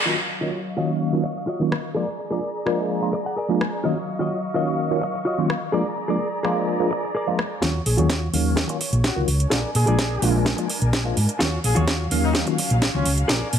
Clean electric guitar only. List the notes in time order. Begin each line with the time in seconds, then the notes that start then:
0.06 F4 F#4 C#5 D#5
0.29 muted clean electric guitar stroke
0.41 F4 F#4 C#5 D#5
0.77 F4 F#4 C#5 D#5
1.00 muted clean electric guitar stroke
1.24 muted clean electric guitar stroke
1.36 muted clean electric guitar stroke
1.47 F4 F#4 C#5 D#5
1.71 muted clean electric guitar stroke
1.95 G#4 A#4 D5
2.18 muted clean electric guitar stroke
2.31 G#4 A#4 D5
2.66 G#4 A#4 D5
2.90 muted clean electric guitar stroke
3.13 D5, muted clean electric guitar stroke
3.25 F#5, muted clean electric guitar stroke
3.36 G#4 A#4 D5 G#5
3.60 muted clean electric guitar stroke
3.84 F4 F#4 C#5 D#5
4.07 muted clean electric guitar stroke
4.19 F4 F#4 C#5 D#5
4.54 F4 F#4 C#5 D#5
4.78 muted clean electric guitar stroke
5.02 muted clean electric guitar stroke
5.14 muted clean electric guitar stroke
5.25 F4 F#4 C#5 D#5
5.49 muted clean electric guitar stroke
5.72 G#4 A#4 D5
5.96 muted clean electric guitar stroke
6.08 G#4 A#4 D5
6.43 G#4 A#4 D5
6.67 muted clean electric guitar stroke
6.91 muted clean electric guitar stroke
7.03 muted clean electric guitar stroke
7.15 G#4 A#4 D5
7.38 muted clean electric guitar stroke
7.62 F4 F#4 C#5
7.97 F4 F#4 C#5
8.56 muted clean electric guitar stroke
8.68 muted clean electric guitar stroke
8.80 muted clean electric guitar stroke
9.50 G#4 A#4 D5
9.86 G#4 A#4 D5
10.45 muted clean electric guitar stroke
10.57 muted clean electric guitar stroke
10.68 muted clean electric guitar stroke
11.39 F4 F#4 C#5
11.75 F4 F#4 C#5
12.34 muted clean electric guitar stroke
12.46 muted clean electric guitar stroke
12.57 muted clean electric guitar stroke
13.28 G#4 A#4 D5